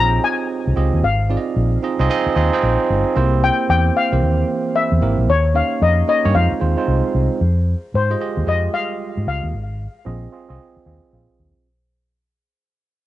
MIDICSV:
0, 0, Header, 1, 5, 480
1, 0, Start_track
1, 0, Key_signature, -4, "minor"
1, 0, Tempo, 530973
1, 934, Time_signature, 4, 2, 24, 8
1, 11810, End_track
2, 0, Start_track
2, 0, Title_t, "Steel pan"
2, 0, Program_c, 0, 114
2, 0, Note_on_c, 0, 82, 111
2, 203, Note_off_c, 0, 82, 0
2, 218, Note_on_c, 0, 80, 106
2, 943, Note_on_c, 0, 77, 84
2, 958, Note_off_c, 0, 80, 0
2, 2582, Note_off_c, 0, 77, 0
2, 3106, Note_on_c, 0, 79, 115
2, 3333, Note_off_c, 0, 79, 0
2, 3344, Note_on_c, 0, 79, 115
2, 3584, Note_on_c, 0, 77, 103
2, 3586, Note_off_c, 0, 79, 0
2, 4263, Note_off_c, 0, 77, 0
2, 4299, Note_on_c, 0, 76, 101
2, 4743, Note_off_c, 0, 76, 0
2, 4790, Note_on_c, 0, 73, 100
2, 5006, Note_off_c, 0, 73, 0
2, 5025, Note_on_c, 0, 77, 98
2, 5266, Note_on_c, 0, 75, 89
2, 5267, Note_off_c, 0, 77, 0
2, 5493, Note_off_c, 0, 75, 0
2, 5504, Note_on_c, 0, 75, 91
2, 5739, Note_on_c, 0, 77, 87
2, 5746, Note_off_c, 0, 75, 0
2, 6420, Note_off_c, 0, 77, 0
2, 7190, Note_on_c, 0, 72, 85
2, 7672, Note_on_c, 0, 75, 99
2, 7676, Note_off_c, 0, 72, 0
2, 7899, Note_on_c, 0, 77, 115
2, 7910, Note_off_c, 0, 75, 0
2, 8378, Note_off_c, 0, 77, 0
2, 8389, Note_on_c, 0, 77, 105
2, 10025, Note_off_c, 0, 77, 0
2, 11810, End_track
3, 0, Start_track
3, 0, Title_t, "Tine electric piano"
3, 0, Program_c, 1, 4
3, 0, Control_c, 1, 64, 127
3, 0, Note_on_c, 1, 60, 83
3, 0, Note_on_c, 1, 63, 74
3, 0, Note_on_c, 1, 65, 77
3, 0, Note_on_c, 1, 67, 92
3, 0, Note_on_c, 1, 68, 72
3, 0, Note_on_c, 1, 73, 71
3, 0, Note_on_c, 1, 75, 85
3, 646, Note_off_c, 1, 60, 0
3, 647, Note_off_c, 1, 65, 0
3, 648, Note_off_c, 1, 63, 0
3, 651, Note_off_c, 1, 68, 0
3, 681, Note_off_c, 1, 75, 0
3, 687, Note_on_c, 1, 60, 85
3, 689, Note_on_c, 1, 65, 72
3, 693, Note_off_c, 1, 67, 0
3, 693, Note_on_c, 1, 67, 75
3, 695, Note_on_c, 1, 68, 74
3, 697, Note_on_c, 1, 75, 88
3, 930, Note_off_c, 1, 60, 0
3, 931, Note_off_c, 1, 65, 0
3, 933, Note_off_c, 1, 67, 0
3, 934, Note_off_c, 1, 68, 0
3, 935, Note_off_c, 1, 75, 0
3, 945, Control_c, 1, 64, 0
3, 953, Note_off_c, 1, 73, 0
3, 1122, Control_c, 1, 64, 127
3, 1170, Note_on_c, 1, 60, 80
3, 1174, Note_on_c, 1, 63, 75
3, 1177, Note_on_c, 1, 65, 75
3, 1180, Note_on_c, 1, 68, 69
3, 1181, Note_on_c, 1, 74, 73
3, 1239, Note_on_c, 1, 75, 89
3, 1251, Note_off_c, 1, 74, 0
3, 1625, Note_off_c, 1, 60, 0
3, 1628, Note_off_c, 1, 63, 0
3, 1629, Note_off_c, 1, 65, 0
3, 1630, Note_off_c, 1, 68, 0
3, 1653, Note_off_c, 1, 75, 0
3, 1653, Note_on_c, 1, 60, 81
3, 1657, Note_on_c, 1, 63, 76
3, 1659, Note_on_c, 1, 65, 77
3, 1664, Note_on_c, 1, 68, 71
3, 1664, Note_on_c, 1, 75, 93
3, 1794, Note_off_c, 1, 60, 0
3, 1796, Note_off_c, 1, 63, 0
3, 1797, Note_off_c, 1, 65, 0
3, 1800, Note_off_c, 1, 68, 0
3, 1800, Note_off_c, 1, 75, 0
3, 1804, Note_on_c, 1, 60, 107
3, 1807, Note_on_c, 1, 63, 98
3, 1810, Note_on_c, 1, 65, 101
3, 1815, Note_on_c, 1, 68, 97
3, 1817, Note_on_c, 1, 75, 118
3, 1886, Note_off_c, 1, 60, 0
3, 1888, Note_off_c, 1, 63, 0
3, 1889, Note_off_c, 1, 65, 0
3, 1892, Note_off_c, 1, 68, 0
3, 1893, Note_off_c, 1, 75, 0
3, 1896, Note_on_c, 1, 60, 112
3, 1897, Note_on_c, 1, 63, 100
3, 1902, Note_on_c, 1, 65, 95
3, 1905, Note_on_c, 1, 68, 91
3, 1906, Note_on_c, 1, 75, 122
3, 2122, Note_off_c, 1, 60, 0
3, 2122, Note_off_c, 1, 63, 0
3, 2124, Note_off_c, 1, 65, 0
3, 2126, Note_off_c, 1, 68, 0
3, 2126, Note_off_c, 1, 75, 0
3, 2132, Note_on_c, 1, 60, 103
3, 2136, Note_on_c, 1, 63, 93
3, 2136, Note_on_c, 1, 65, 93
3, 2141, Note_on_c, 1, 68, 95
3, 2143, Note_on_c, 1, 75, 112
3, 2274, Note_off_c, 1, 60, 0
3, 2276, Note_off_c, 1, 63, 0
3, 2276, Note_off_c, 1, 65, 0
3, 2278, Note_off_c, 1, 68, 0
3, 2279, Note_off_c, 1, 75, 0
3, 2287, Note_on_c, 1, 60, 111
3, 2288, Note_on_c, 1, 63, 100
3, 2291, Note_on_c, 1, 65, 99
3, 2292, Note_on_c, 1, 68, 98
3, 2296, Note_on_c, 1, 72, 120
3, 2821, Note_off_c, 1, 60, 0
3, 2822, Note_off_c, 1, 63, 0
3, 2823, Note_off_c, 1, 65, 0
3, 2824, Note_off_c, 1, 68, 0
3, 2826, Note_off_c, 1, 72, 0
3, 2852, Note_on_c, 1, 58, 102
3, 2856, Note_on_c, 1, 60, 96
3, 2859, Note_on_c, 1, 64, 85
3, 2863, Note_on_c, 1, 67, 96
3, 2863, Note_on_c, 1, 72, 104
3, 2867, Control_c, 1, 64, 0
3, 3040, Control_c, 1, 64, 127
3, 3644, Note_off_c, 1, 58, 0
3, 3646, Note_off_c, 1, 60, 0
3, 3648, Note_off_c, 1, 64, 0
3, 3650, Note_off_c, 1, 67, 0
3, 3650, Note_off_c, 1, 72, 0
3, 3724, Note_on_c, 1, 58, 81
3, 3724, Note_on_c, 1, 60, 77
3, 3728, Note_on_c, 1, 52, 79
3, 3728, Note_on_c, 1, 67, 76
3, 3733, Note_on_c, 1, 72, 91
3, 4486, Note_off_c, 1, 58, 0
3, 4486, Note_off_c, 1, 60, 0
3, 4488, Note_off_c, 1, 67, 0
3, 4489, Note_off_c, 1, 52, 0
3, 4491, Note_off_c, 1, 72, 0
3, 4531, Note_on_c, 1, 58, 82
3, 4535, Note_on_c, 1, 60, 74
3, 4538, Note_on_c, 1, 64, 76
3, 4541, Note_on_c, 1, 67, 74
3, 4543, Note_on_c, 1, 70, 94
3, 4773, Note_off_c, 1, 58, 0
3, 4775, Note_off_c, 1, 60, 0
3, 4776, Note_off_c, 1, 64, 0
3, 4778, Note_off_c, 1, 67, 0
3, 4778, Note_off_c, 1, 70, 0
3, 4787, Control_c, 1, 64, 0
3, 4936, Control_c, 1, 64, 127
3, 5009, Note_on_c, 1, 58, 74
3, 5012, Note_on_c, 1, 61, 76
3, 5016, Note_on_c, 1, 63, 74
3, 5019, Note_on_c, 1, 67, 72
3, 5021, Note_on_c, 1, 73, 90
3, 5465, Note_off_c, 1, 58, 0
3, 5466, Note_off_c, 1, 61, 0
3, 5468, Note_off_c, 1, 63, 0
3, 5470, Note_off_c, 1, 67, 0
3, 5471, Note_off_c, 1, 73, 0
3, 5493, Note_on_c, 1, 58, 74
3, 5497, Note_on_c, 1, 61, 63
3, 5499, Note_on_c, 1, 63, 65
3, 5502, Note_on_c, 1, 67, 62
3, 5505, Note_on_c, 1, 73, 79
3, 5634, Note_off_c, 1, 58, 0
3, 5636, Note_off_c, 1, 61, 0
3, 5637, Note_off_c, 1, 63, 0
3, 5639, Note_off_c, 1, 67, 0
3, 5640, Note_off_c, 1, 73, 0
3, 5646, Note_on_c, 1, 58, 89
3, 5647, Note_on_c, 1, 61, 82
3, 5652, Note_on_c, 1, 63, 85
3, 5653, Note_on_c, 1, 67, 80
3, 5655, Note_on_c, 1, 73, 103
3, 5727, Note_off_c, 1, 58, 0
3, 5728, Note_off_c, 1, 61, 0
3, 5730, Note_off_c, 1, 63, 0
3, 5731, Note_off_c, 1, 67, 0
3, 5732, Note_off_c, 1, 73, 0
3, 5736, Note_on_c, 1, 56, 87
3, 5738, Note_on_c, 1, 60, 78
3, 5741, Note_on_c, 1, 63, 75
3, 5744, Note_on_c, 1, 65, 76
3, 5744, Note_on_c, 1, 72, 100
3, 5747, Control_c, 1, 64, 0
3, 5919, Control_c, 1, 64, 127
3, 5957, Note_off_c, 1, 56, 0
3, 5960, Note_off_c, 1, 60, 0
3, 5964, Note_off_c, 1, 63, 0
3, 5966, Note_off_c, 1, 65, 0
3, 5966, Note_off_c, 1, 72, 0
3, 5968, Note_on_c, 1, 56, 85
3, 5970, Note_on_c, 1, 60, 80
3, 5975, Note_on_c, 1, 63, 81
3, 5977, Note_on_c, 1, 65, 78
3, 5979, Note_on_c, 1, 72, 93
3, 6108, Note_off_c, 1, 56, 0
3, 6109, Note_off_c, 1, 60, 0
3, 6113, Note_off_c, 1, 65, 0
3, 6115, Note_off_c, 1, 63, 0
3, 6117, Note_off_c, 1, 72, 0
3, 6119, Note_on_c, 1, 56, 89
3, 6120, Note_on_c, 1, 60, 82
3, 6124, Note_on_c, 1, 65, 79
3, 6126, Note_on_c, 1, 63, 81
3, 6131, Note_on_c, 1, 72, 101
3, 6657, Note_off_c, 1, 56, 0
3, 6658, Note_off_c, 1, 60, 0
3, 6660, Note_off_c, 1, 65, 0
3, 6661, Note_off_c, 1, 63, 0
3, 6663, Note_off_c, 1, 72, 0
3, 6705, Control_c, 1, 64, 0
3, 6866, Control_c, 1, 64, 127
3, 7324, Note_on_c, 1, 56, 91
3, 7327, Note_on_c, 1, 65, 81
3, 7331, Note_on_c, 1, 67, 75
3, 7333, Note_on_c, 1, 75, 96
3, 7406, Note_off_c, 1, 56, 0
3, 7408, Note_off_c, 1, 65, 0
3, 7410, Note_off_c, 1, 67, 0
3, 7411, Note_off_c, 1, 75, 0
3, 7417, Note_on_c, 1, 56, 87
3, 7417, Note_on_c, 1, 65, 71
3, 7423, Note_on_c, 1, 67, 69
3, 7426, Note_on_c, 1, 75, 93
3, 7642, Note_off_c, 1, 56, 0
3, 7642, Note_off_c, 1, 65, 0
3, 7645, Note_off_c, 1, 67, 0
3, 7647, Note_off_c, 1, 75, 0
3, 7656, Note_on_c, 1, 56, 87
3, 7660, Note_on_c, 1, 65, 76
3, 7666, Note_on_c, 1, 67, 74
3, 7667, Note_on_c, 1, 75, 94
3, 7882, Note_off_c, 1, 56, 0
3, 7884, Note_off_c, 1, 65, 0
3, 7887, Note_off_c, 1, 67, 0
3, 7887, Note_off_c, 1, 75, 0
3, 7896, Note_on_c, 1, 55, 61
3, 7898, Note_on_c, 1, 65, 70
3, 7904, Note_on_c, 1, 67, 68
3, 7906, Note_on_c, 1, 75, 92
3, 7955, Note_on_c, 1, 56, 77
3, 7968, Note_off_c, 1, 55, 0
3, 8616, Note_off_c, 1, 65, 0
3, 8619, Note_off_c, 1, 67, 0
3, 8620, Note_off_c, 1, 75, 0
3, 8626, Control_c, 1, 64, 0
3, 8644, Note_off_c, 1, 56, 0
3, 8758, Control_c, 1, 64, 127
3, 9086, Note_on_c, 1, 60, 94
3, 9093, Note_on_c, 1, 65, 88
3, 9095, Note_on_c, 1, 68, 90
3, 9099, Note_on_c, 1, 75, 111
3, 9317, Note_off_c, 1, 60, 0
3, 9320, Note_off_c, 1, 65, 0
3, 9321, Note_off_c, 1, 68, 0
3, 9324, Note_off_c, 1, 75, 0
3, 9331, Note_on_c, 1, 60, 81
3, 9334, Note_on_c, 1, 65, 85
3, 9339, Note_on_c, 1, 68, 86
3, 9344, Note_on_c, 1, 75, 94
3, 9473, Note_off_c, 1, 60, 0
3, 9475, Note_off_c, 1, 65, 0
3, 9477, Note_off_c, 1, 68, 0
3, 9480, Note_off_c, 1, 75, 0
3, 9484, Note_on_c, 1, 60, 101
3, 9489, Note_on_c, 1, 65, 92
3, 9492, Note_on_c, 1, 68, 94
3, 9496, Note_on_c, 1, 75, 114
3, 9793, Note_off_c, 1, 60, 0
3, 9796, Note_off_c, 1, 65, 0
3, 9797, Note_off_c, 1, 68, 0
3, 9799, Note_off_c, 1, 75, 0
3, 9818, Note_on_c, 1, 60, 85
3, 9821, Note_on_c, 1, 65, 83
3, 9823, Note_on_c, 1, 68, 92
3, 9826, Note_on_c, 1, 75, 105
3, 10043, Note_off_c, 1, 60, 0
3, 10044, Note_off_c, 1, 65, 0
3, 10045, Note_off_c, 1, 68, 0
3, 10047, Note_off_c, 1, 75, 0
3, 10060, Note_on_c, 1, 60, 80
3, 10064, Note_on_c, 1, 65, 79
3, 10069, Note_on_c, 1, 68, 78
3, 10073, Note_on_c, 1, 77, 99
3, 10537, Note_off_c, 1, 60, 0
3, 10539, Note_off_c, 1, 65, 0
3, 10542, Note_off_c, 1, 68, 0
3, 10543, Note_off_c, 1, 77, 0
3, 10547, Control_c, 1, 64, 0
3, 11810, End_track
4, 0, Start_track
4, 0, Title_t, "Fingered electric bass"
4, 0, Program_c, 2, 33
4, 0, Note_on_c, 2, 34, 89
4, 159, Note_off_c, 2, 34, 0
4, 610, Note_on_c, 2, 36, 94
4, 674, Note_off_c, 2, 36, 0
4, 694, Note_on_c, 2, 37, 98
4, 808, Note_off_c, 2, 37, 0
4, 846, Note_on_c, 2, 39, 79
4, 912, Note_off_c, 2, 39, 0
4, 932, Note_on_c, 2, 32, 103
4, 1227, Note_off_c, 2, 32, 0
4, 1414, Note_on_c, 2, 34, 91
4, 1594, Note_off_c, 2, 34, 0
4, 1805, Note_on_c, 2, 36, 103
4, 1872, Note_off_c, 2, 36, 0
4, 2136, Note_on_c, 2, 39, 92
4, 2249, Note_off_c, 2, 39, 0
4, 2378, Note_on_c, 2, 34, 97
4, 2491, Note_off_c, 2, 34, 0
4, 2620, Note_on_c, 2, 31, 94
4, 2732, Note_off_c, 2, 31, 0
4, 2859, Note_on_c, 2, 36, 107
4, 3151, Note_off_c, 2, 36, 0
4, 3337, Note_on_c, 2, 40, 94
4, 3516, Note_off_c, 2, 40, 0
4, 3728, Note_on_c, 2, 36, 98
4, 3793, Note_off_c, 2, 36, 0
4, 3815, Note_on_c, 2, 39, 86
4, 3995, Note_off_c, 2, 39, 0
4, 4445, Note_on_c, 2, 40, 86
4, 4512, Note_off_c, 2, 40, 0
4, 4535, Note_on_c, 2, 32, 91
4, 4649, Note_off_c, 2, 32, 0
4, 4687, Note_on_c, 2, 34, 93
4, 4753, Note_off_c, 2, 34, 0
4, 4778, Note_on_c, 2, 39, 116
4, 5070, Note_off_c, 2, 39, 0
4, 5258, Note_on_c, 2, 41, 108
4, 5436, Note_off_c, 2, 41, 0
4, 5654, Note_on_c, 2, 43, 93
4, 5717, Note_off_c, 2, 43, 0
4, 5739, Note_on_c, 2, 41, 104
4, 5851, Note_off_c, 2, 41, 0
4, 5981, Note_on_c, 2, 39, 87
4, 6093, Note_off_c, 2, 39, 0
4, 6219, Note_on_c, 2, 36, 97
4, 6331, Note_off_c, 2, 36, 0
4, 6462, Note_on_c, 2, 36, 99
4, 6573, Note_off_c, 2, 36, 0
4, 6699, Note_on_c, 2, 41, 106
4, 6991, Note_off_c, 2, 41, 0
4, 7180, Note_on_c, 2, 44, 97
4, 7358, Note_off_c, 2, 44, 0
4, 7567, Note_on_c, 2, 39, 88
4, 7633, Note_off_c, 2, 39, 0
4, 7656, Note_on_c, 2, 41, 84
4, 7836, Note_off_c, 2, 41, 0
4, 8292, Note_on_c, 2, 44, 81
4, 8356, Note_off_c, 2, 44, 0
4, 8379, Note_on_c, 2, 37, 96
4, 8491, Note_off_c, 2, 37, 0
4, 8528, Note_on_c, 2, 39, 92
4, 8593, Note_off_c, 2, 39, 0
4, 8619, Note_on_c, 2, 32, 108
4, 8912, Note_off_c, 2, 32, 0
4, 9098, Note_on_c, 2, 34, 107
4, 9276, Note_off_c, 2, 34, 0
4, 9493, Note_on_c, 2, 36, 88
4, 9556, Note_off_c, 2, 36, 0
4, 9819, Note_on_c, 2, 39, 80
4, 9931, Note_off_c, 2, 39, 0
4, 10061, Note_on_c, 2, 34, 100
4, 10172, Note_off_c, 2, 34, 0
4, 10300, Note_on_c, 2, 39, 82
4, 10412, Note_off_c, 2, 39, 0
4, 11810, End_track
5, 0, Start_track
5, 0, Title_t, "Muted fingered electric bass strokes"
5, 2047, Note_on_c, 9, 29, 52
5, 2138, Note_off_c, 9, 29, 0
5, 5894, Note_on_c, 9, 29, 47
5, 5985, Note_off_c, 9, 29, 0
5, 9733, Note_on_c, 9, 29, 50
5, 9823, Note_off_c, 9, 29, 0
5, 11810, End_track
0, 0, End_of_file